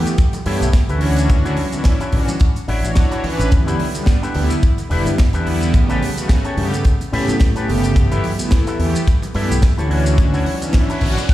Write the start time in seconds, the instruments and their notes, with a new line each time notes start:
0.06 closed hi-hat, high conga, shaker
0.18 muted clean electric guitar stroke, kick, closed hi-hat, shaker
0.33 closed hi-hat, muted conga, shaker
0.46 picked electric bass G2, analog synth pad E3 A3 B3 G4, clean electric guitar E4 G4 A4 C#5, open hi-hat, high conga
0.61 picked electric bass B1, closed hi-hat, high conga, shaker
0.73 kick, snare, closed hi-hat, muted conga, shaker
0.89 picked electric bass D2, analog synth pad E3 C#4 D4 F#4, clean electric guitar E4 G4 A4 B4, closed hi-hat, shaker
1.01 clean electric guitar D4 E4 F#4 C#5, open hi-hat
1.16 closed hi-hat, shaker
1.29 picked electric bass D2, analog synth pad E3 C#4 D4 F#4, kick, closed hi-hat, muted conga, shaker
1.45 picked electric bass D2, clean electric guitar D4 E4 F#4 C#5, closed hi-hat, shaker
1.57 open hi-hat, high conga
1.72 analog synth pad E3 C#4 D4 E4, closed hi-hat, muted conga, low conga, shaker
1.84 muted clean electric guitar stroke, kick, snare, closed hi-hat, shaker
2.00 clean electric guitar D4 E4 F#4 C#5, closed hi-hat, shaker
2.12 picked electric bass A1, analog synth pad E3 C#4 D4 F#4, kick, open hi-hat, low conga
2.28 closed hi-hat, muted conga, high conga, shaker
2.40 muted clean electric guitar stroke, kick, closed hi-hat, shaker
2.56 muted picked electric bass stroke, closed hi-hat, shaker
2.68 picked electric bass A1, clean electric guitar D4 E4 F#4 C#5, open hi-hat, muted conga, high conga
2.83 picked electric bass A1, analog synth pad E3 D4 F#4 C#5, closed hi-hat, high conga, shaker
2.95 kick, snare, closed hi-hat, shaker
3.11 clean electric guitar D4 E4 F#4 C#5, closed hi-hat, shaker
3.23 analog synth pad E3 C#4 D4 B4, muted picked electric bass stroke, open hi-hat, muted conga, low conga
3.39 picked electric bass A1, muted clean electric guitar stroke, closed hi-hat, shaker
3.51 picked electric bass E2, analog synth pad D3 G3 B3 E4, kick, closed hi-hat, shaker
3.67 picked electric bass E2, clean electric guitar D4 E4 G4 B4, closed hi-hat, shaker
3.79 open hi-hat, muted conga, high conga
3.95 analog synth pad D3 G3 B3 D4, closed hi-hat, low conga, shaker
4.06 muted clean electric guitar stroke, kick, snare, closed hi-hat, shaker
4.22 clean electric guitar D4 E4 G4 B4, closed hi-hat, shaker
4.34 picked electric bass D2, analog synth pad D3 G3 B3 E4, open hi-hat, muted conga, low conga
4.50 closed hi-hat, high conga, shaker
4.63 muted clean electric guitar stroke, kick, closed hi-hat, shaker
4.78 closed hi-hat, muted conga, shaker
4.90 picked electric bass E1, analog synth pad D3 G3 B3 E4, clean electric guitar D4 E4 G4 B4, open hi-hat, high conga
5.06 picked electric bass G2, closed hi-hat, high conga, shaker
5.18 kick, snare, closed hi-hat, shaker
5.33 picked electric bass E2, analog synth pad D3 G3 B3 E4, clean electric guitar D4 E4 G4 B4, closed hi-hat, muted conga, shaker
5.47 open hi-hat
5.61 muted clean electric guitar stroke, closed hi-hat, shaker
5.73 picked electric bass A1, analog synth pad C#3 A3 B3 G4, kick, closed hi-hat, muted conga, shaker
5.89 picked electric bass A1, clean electric guitar C#4 G4 A4 B4, closed hi-hat, shaker
6.02 open hi-hat, high conga
6.17 analog synth pad C#3 A3 B3 F#4, closed hi-hat, low conga, shaker
6.29 muted clean electric guitar stroke, kick, snare, closed hi-hat, muted conga, shaker
6.45 clean electric guitar C#4 G4 A4 C#5, closed hi-hat, shaker
6.57 picked electric bass G2, analog synth pad C#3 A3 B3 G4, open hi-hat, low conga
6.72 closed hi-hat, muted conga, high conga, shaker
6.85 muted clean electric guitar stroke, kick, closed hi-hat, shaker
7.01 muted picked electric bass stroke, closed hi-hat, shaker
7.12 picked electric bass A2, analog synth pad C#3 A3 B3 G4, clean electric guitar C#4 G4 A4 B4, open hi-hat, high conga
7.28 picked electric bass A2, closed hi-hat, muted conga, high conga, shaker
7.40 kick, snare, closed hi-hat, shaker
7.55 analog synth pad C#3 A3 B3 G4, clean electric guitar C#4 G4 A4 B4, closed hi-hat, shaker
7.68 picked electric bass G1, open hi-hat, muted conga, low conga
7.84 muted clean electric guitar stroke, closed hi-hat, shaker
7.96 picked electric bass G1, analog synth pad E3 A3 B3 G4, kick, closed hi-hat, shaker
8.11 picked electric bass G1, clean electric guitar E4 G4 A4 B4, closed hi-hat, shaker
8.24 open hi-hat, muted conga, high conga
8.39 analog synth pad E3 A3 B3 E4, closed hi-hat, low conga, shaker
8.51 muted clean electric guitar stroke, kick, snare, closed hi-hat, shaker
8.67 clean electric guitar E4 G4 A4 B4, closed hi-hat, muted conga, shaker
8.79 picked electric bass E2, analog synth pad E3 A3 B3 G4, open hi-hat, low conga
8.95 closed hi-hat, high conga, shaker
9.07 muted clean electric guitar stroke, kick, closed hi-hat, shaker
9.22 closed hi-hat, muted conga, shaker
9.34 picked electric bass G2, analog synth pad E3 A3 B3 G4, clean electric guitar E4 G4 A4 B4, open hi-hat, high conga
9.51 picked electric bass B1, closed hi-hat, high conga, shaker
9.62 kick, snare, closed hi-hat, muted conga, shaker
9.78 picked electric bass D2, analog synth pad E3 C#4 D4 F#4, clean electric guitar E4 G4 A4 C#5, closed hi-hat, shaker
9.90 clean electric guitar D4 E4 F#4 C#5, open hi-hat
10.06 closed hi-hat, shaker
10.18 picked electric bass D2, analog synth pad E3 C#4 D4 F#4, kick, closed hi-hat, noise sweep, muted conga, shaker
10.34 picked electric bass D2, clean electric guitar D4 E4 F#4 C#5, open hi-hat, shaker
10.46 open hi-hat, high conga
10.61 analog synth pad E3 C#4 D4 E4, closed hi-hat, muted conga, low conga, shaker
10.73 muted clean electric guitar stroke, kick, snare, closed hi-hat, shaker
10.89 clean electric guitar D4 E4 F#4 C#5, closed hi-hat, shaker
11.01 picked electric bass A1, analog synth pad E3 C#4 D4 F#4, clean electric guitar C#5, kick, open hi-hat, low conga
11.17 closed hi-hat, muted conga, high conga, shaker
11.29 clean electric guitar F#5, muted clean electric guitar stroke, kick, closed hi-hat, shaker